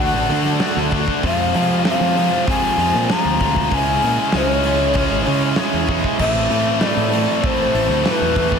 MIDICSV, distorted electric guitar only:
0, 0, Header, 1, 2, 480
1, 0, Start_track
1, 0, Tempo, 619195
1, 957, Time_signature, 4, 2, 24, 8
1, 6661, End_track
2, 0, Start_track
2, 0, Title_t, "Distorted electric guitar"
2, 0, Program_c, 0, 30
2, 0, Note_on_c, 0, 50, 92
2, 0, Note_on_c, 0, 57, 100
2, 0, Note_on_c, 0, 62, 101
2, 211, Note_off_c, 0, 50, 0
2, 217, Note_off_c, 0, 57, 0
2, 220, Note_off_c, 0, 62, 0
2, 221, Note_on_c, 0, 50, 95
2, 227, Note_on_c, 0, 57, 101
2, 229, Note_on_c, 0, 62, 91
2, 449, Note_off_c, 0, 50, 0
2, 456, Note_off_c, 0, 62, 0
2, 458, Note_off_c, 0, 57, 0
2, 459, Note_on_c, 0, 50, 100
2, 465, Note_on_c, 0, 62, 117
2, 467, Note_on_c, 0, 57, 115
2, 691, Note_off_c, 0, 50, 0
2, 698, Note_off_c, 0, 57, 0
2, 700, Note_off_c, 0, 62, 0
2, 701, Note_on_c, 0, 50, 89
2, 707, Note_on_c, 0, 57, 91
2, 710, Note_on_c, 0, 62, 96
2, 935, Note_off_c, 0, 50, 0
2, 938, Note_off_c, 0, 57, 0
2, 939, Note_off_c, 0, 62, 0
2, 953, Note_on_c, 0, 48, 96
2, 954, Note_on_c, 0, 41, 99
2, 955, Note_on_c, 0, 53, 105
2, 1187, Note_off_c, 0, 48, 0
2, 1188, Note_off_c, 0, 41, 0
2, 1193, Note_off_c, 0, 53, 0
2, 1197, Note_on_c, 0, 41, 79
2, 1197, Note_on_c, 0, 48, 92
2, 1202, Note_on_c, 0, 53, 89
2, 1418, Note_off_c, 0, 41, 0
2, 1422, Note_off_c, 0, 48, 0
2, 1427, Note_off_c, 0, 53, 0
2, 1427, Note_on_c, 0, 41, 108
2, 1432, Note_on_c, 0, 48, 108
2, 1436, Note_on_c, 0, 53, 102
2, 1655, Note_off_c, 0, 41, 0
2, 1662, Note_off_c, 0, 48, 0
2, 1665, Note_off_c, 0, 53, 0
2, 1665, Note_on_c, 0, 41, 95
2, 1671, Note_on_c, 0, 48, 110
2, 1674, Note_on_c, 0, 53, 103
2, 1908, Note_off_c, 0, 41, 0
2, 1912, Note_off_c, 0, 48, 0
2, 1917, Note_off_c, 0, 53, 0
2, 1917, Note_on_c, 0, 41, 97
2, 1921, Note_on_c, 0, 48, 93
2, 1926, Note_on_c, 0, 53, 104
2, 2150, Note_off_c, 0, 41, 0
2, 2156, Note_off_c, 0, 48, 0
2, 2157, Note_off_c, 0, 53, 0
2, 2160, Note_on_c, 0, 41, 97
2, 2166, Note_on_c, 0, 48, 97
2, 2167, Note_on_c, 0, 53, 100
2, 2377, Note_off_c, 0, 41, 0
2, 2381, Note_off_c, 0, 48, 0
2, 2382, Note_off_c, 0, 53, 0
2, 2386, Note_on_c, 0, 41, 97
2, 2391, Note_on_c, 0, 48, 110
2, 2392, Note_on_c, 0, 53, 112
2, 2624, Note_off_c, 0, 41, 0
2, 2628, Note_off_c, 0, 48, 0
2, 2632, Note_off_c, 0, 53, 0
2, 2633, Note_on_c, 0, 41, 86
2, 2637, Note_on_c, 0, 48, 96
2, 2641, Note_on_c, 0, 53, 101
2, 2861, Note_off_c, 0, 41, 0
2, 2863, Note_off_c, 0, 48, 0
2, 2865, Note_off_c, 0, 53, 0
2, 2875, Note_on_c, 0, 49, 100
2, 2882, Note_on_c, 0, 56, 111
2, 2883, Note_on_c, 0, 61, 103
2, 3109, Note_off_c, 0, 49, 0
2, 3113, Note_off_c, 0, 56, 0
2, 3115, Note_off_c, 0, 61, 0
2, 3118, Note_on_c, 0, 49, 80
2, 3123, Note_on_c, 0, 56, 80
2, 3124, Note_on_c, 0, 61, 89
2, 3348, Note_off_c, 0, 49, 0
2, 3351, Note_off_c, 0, 56, 0
2, 3356, Note_off_c, 0, 61, 0
2, 3357, Note_on_c, 0, 49, 94
2, 3360, Note_on_c, 0, 56, 94
2, 3365, Note_on_c, 0, 61, 100
2, 3594, Note_off_c, 0, 49, 0
2, 3603, Note_off_c, 0, 56, 0
2, 3603, Note_on_c, 0, 49, 91
2, 3608, Note_off_c, 0, 61, 0
2, 3612, Note_on_c, 0, 56, 108
2, 3618, Note_on_c, 0, 61, 108
2, 3840, Note_off_c, 0, 49, 0
2, 3844, Note_off_c, 0, 61, 0
2, 3845, Note_off_c, 0, 56, 0
2, 3849, Note_on_c, 0, 49, 93
2, 3853, Note_on_c, 0, 61, 107
2, 3854, Note_on_c, 0, 56, 96
2, 4073, Note_off_c, 0, 49, 0
2, 4076, Note_off_c, 0, 56, 0
2, 4082, Note_off_c, 0, 61, 0
2, 4083, Note_on_c, 0, 49, 101
2, 4085, Note_on_c, 0, 56, 100
2, 4091, Note_on_c, 0, 61, 112
2, 4315, Note_off_c, 0, 56, 0
2, 4316, Note_off_c, 0, 49, 0
2, 4320, Note_off_c, 0, 61, 0
2, 4324, Note_on_c, 0, 56, 109
2, 4325, Note_on_c, 0, 49, 108
2, 4329, Note_on_c, 0, 61, 113
2, 4549, Note_off_c, 0, 49, 0
2, 4550, Note_off_c, 0, 56, 0
2, 4558, Note_off_c, 0, 61, 0
2, 4559, Note_on_c, 0, 49, 84
2, 4560, Note_on_c, 0, 56, 83
2, 4567, Note_on_c, 0, 61, 98
2, 4784, Note_off_c, 0, 49, 0
2, 4784, Note_off_c, 0, 56, 0
2, 4788, Note_off_c, 0, 61, 0
2, 4797, Note_on_c, 0, 45, 93
2, 4802, Note_on_c, 0, 57, 99
2, 4805, Note_on_c, 0, 52, 105
2, 5032, Note_off_c, 0, 45, 0
2, 5032, Note_off_c, 0, 52, 0
2, 5041, Note_on_c, 0, 45, 81
2, 5042, Note_on_c, 0, 52, 84
2, 5046, Note_off_c, 0, 57, 0
2, 5049, Note_on_c, 0, 57, 81
2, 5275, Note_off_c, 0, 45, 0
2, 5280, Note_off_c, 0, 52, 0
2, 5285, Note_on_c, 0, 45, 92
2, 5287, Note_off_c, 0, 57, 0
2, 5289, Note_on_c, 0, 52, 104
2, 5290, Note_on_c, 0, 57, 102
2, 5513, Note_off_c, 0, 45, 0
2, 5515, Note_off_c, 0, 52, 0
2, 5523, Note_on_c, 0, 45, 93
2, 5524, Note_on_c, 0, 52, 94
2, 5525, Note_off_c, 0, 57, 0
2, 5528, Note_on_c, 0, 57, 108
2, 5746, Note_off_c, 0, 45, 0
2, 5747, Note_off_c, 0, 52, 0
2, 5747, Note_off_c, 0, 57, 0
2, 5755, Note_on_c, 0, 45, 99
2, 5756, Note_on_c, 0, 52, 100
2, 5757, Note_on_c, 0, 57, 112
2, 5986, Note_off_c, 0, 45, 0
2, 5991, Note_off_c, 0, 52, 0
2, 5994, Note_off_c, 0, 57, 0
2, 5995, Note_on_c, 0, 45, 96
2, 6000, Note_on_c, 0, 52, 106
2, 6003, Note_on_c, 0, 57, 113
2, 6229, Note_off_c, 0, 45, 0
2, 6230, Note_off_c, 0, 52, 0
2, 6233, Note_off_c, 0, 57, 0
2, 6239, Note_on_c, 0, 45, 105
2, 6240, Note_on_c, 0, 52, 109
2, 6242, Note_on_c, 0, 57, 109
2, 6467, Note_off_c, 0, 45, 0
2, 6471, Note_off_c, 0, 52, 0
2, 6474, Note_off_c, 0, 57, 0
2, 6477, Note_on_c, 0, 45, 90
2, 6480, Note_on_c, 0, 52, 106
2, 6483, Note_on_c, 0, 57, 89
2, 6661, Note_off_c, 0, 45, 0
2, 6661, Note_off_c, 0, 52, 0
2, 6661, Note_off_c, 0, 57, 0
2, 6661, End_track
0, 0, End_of_file